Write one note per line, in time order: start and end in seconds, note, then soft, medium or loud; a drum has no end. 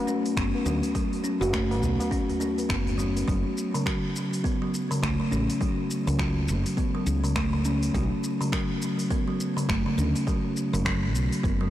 0.07 0.24 C#4 medium
0.07 tabla tin soft
0.07 shaker medium
0.26 open hi-hat soft
0.26 shaker soft
0.37 0.52 F#1 medium
0.37 0.65 B3 medium
0.37 finger snap loud
0.37 kick loud
0.37 open hi-hat medium
0.37 shaker soft
0.55 tabla tin medium
0.66 0.81 D2 medium
0.66 0.82 F#3 medium
0.66 tabla tin medium
0.66 tabla ge medium
0.66 shaker medium
0.83 open hi-hat soft
0.83 shaker soft
0.95 1.23 F#3 medium
0.95 kick medium
0.95 open hi-hat medium
0.95 shaker soft
1.13 open hi-hat soft
1.24 1.40 C#4 medium
1.24 shaker medium
1.41 1.82 F#1 medium
1.41 1.53 F#4 medium
1.41 open hi-hat soft
1.41 tabla na soft
1.41 shaker soft
1.53 1.63 A3 medium
1.53 finger snap loud
1.53 kick loud
1.53 open hi-hat medium
1.53 shaker soft
1.71 open hi-hat soft
1.71 tabla na medium
1.82 1.97 B1 medium
1.82 2.10 B3 medium
1.82 tabla ge medium
1.82 shaker medium
2.00 open hi-hat soft
2.00 tabla na medium
2.00 tabla tin soft
2.00 shaker soft
2.11 2.39 C#4 medium
2.11 kick loud
2.11 open hi-hat medium
2.11 shaker soft
2.29 open hi-hat soft
2.29 tabla tin soft
2.29 tabla ge medium
2.40 2.57 C#4 medium
2.40 shaker medium
2.58 open hi-hat soft
2.58 tabla tin medium
2.58 shaker soft
2.69 3.25 F#1 medium
2.69 2.97 B3 medium
2.69 finger snap loud
2.69 kick loud
2.69 open hi-hat medium
2.69 shaker soft
2.86 open hi-hat soft
2.86 tabla ge medium
2.98 3.15 F#3 medium
2.98 shaker medium
3.17 open hi-hat soft
3.17 tabla tin soft
3.17 shaker soft
3.28 3.43 F#1 medium
3.28 3.73 F#3 medium
3.28 kick loud
3.28 open hi-hat soft
3.28 shaker soft
3.58 shaker medium
3.74 3.85 C#3 medium
3.74 open hi-hat medium
3.74 shaker soft
3.86 4.03 F#3 medium
3.86 finger snap loud
3.86 kick loud
3.86 open hi-hat soft
3.86 shaker soft
4.16 shaker medium
4.33 open hi-hat medium
4.33 shaker soft
4.44 4.60 B3 medium
4.44 kick loud
4.44 open hi-hat soft
4.44 shaker soft
4.62 4.73 F#3 medium
4.74 shaker medium
4.91 5.02 C#3 medium
4.91 open hi-hat medium
4.91 shaker soft
5.03 5.18 C#2 medium
5.03 5.18 A3 medium
5.03 finger snap loud
5.03 kick loud
5.03 open hi-hat soft
5.03 shaker soft
5.20 5.31 C#3 medium
5.31 5.47 A1 medium
5.31 5.42 C#4 medium
5.31 shaker medium
5.50 open hi-hat medium
5.50 shaker soft
5.61 6.06 F#3 medium
5.61 kick loud
5.61 open hi-hat soft
5.61 shaker soft
5.91 shaker medium
6.07 6.50 C#2 loud
6.07 6.18 C#3 medium
6.07 open hi-hat medium
6.07 shaker soft
6.19 6.36 F#3 medium
6.19 finger snap loud
6.19 kick loud
6.19 open hi-hat soft
6.19 shaker soft
6.48 6.63 F#1 loud
6.48 shaker medium
6.66 open hi-hat medium
6.66 shaker soft
6.77 6.93 B3 medium
6.77 kick loud
6.77 open hi-hat soft
6.77 shaker soft
6.95 7.06 F#3 medium
7.07 7.91 C#2 medium
7.07 shaker medium
7.24 7.35 C#3 medium
7.24 open hi-hat medium
7.24 shaker soft
7.36 7.52 A3 medium
7.36 finger snap loud
7.36 kick loud
7.36 open hi-hat soft
7.36 shaker soft
7.53 7.64 C#3 medium
7.65 7.75 C#4 medium
7.65 shaker medium
7.83 open hi-hat medium
7.83 shaker soft
7.94 8.09 B1 medium
7.94 8.39 F#3 medium
7.94 kick loud
7.94 open hi-hat soft
7.94 shaker soft
8.24 shaker medium
8.41 8.51 C#3 medium
8.41 open hi-hat medium
8.41 shaker soft
8.52 8.69 F#3 loud
8.52 finger snap loud
8.52 kick loud
8.52 open hi-hat soft
8.52 shaker soft
8.82 shaker medium
8.99 open hi-hat medium
8.99 shaker soft
9.10 9.26 B3 medium
9.10 kick loud
9.10 open hi-hat soft
9.10 shaker soft
9.28 9.39 F#3 medium
9.40 shaker medium
9.57 9.68 C#3 medium
9.57 open hi-hat medium
9.57 shaker soft
9.69 9.84 F#1 medium
9.69 9.84 A3 medium
9.69 finger snap loud
9.69 kick loud
9.69 open hi-hat soft
9.69 shaker soft
9.86 9.97 C#3 medium
9.98 10.13 D2 medium
9.98 10.08 C#4 medium
9.98 shaker medium
10.16 open hi-hat medium
10.16 shaker soft
10.27 10.72 F#3 medium
10.27 kick loud
10.27 open hi-hat soft
10.27 shaker soft
10.57 shaker medium
10.73 11.15 F#1 medium
10.73 10.84 C#3 medium
10.73 open hi-hat medium
10.73 shaker soft
10.85 11.02 F#3 medium
10.85 finger snap loud
10.85 kick loud
10.85 open hi-hat soft
10.85 shaker soft
11.15 11.29 B1 medium
11.15 shaker medium
11.33 open hi-hat medium
11.33 shaker soft
11.43 11.70 F#1 medium
11.43 11.59 B3 medium
11.43 kick loud
11.43 open hi-hat soft
11.43 shaker soft
11.61 11.70 F#3 medium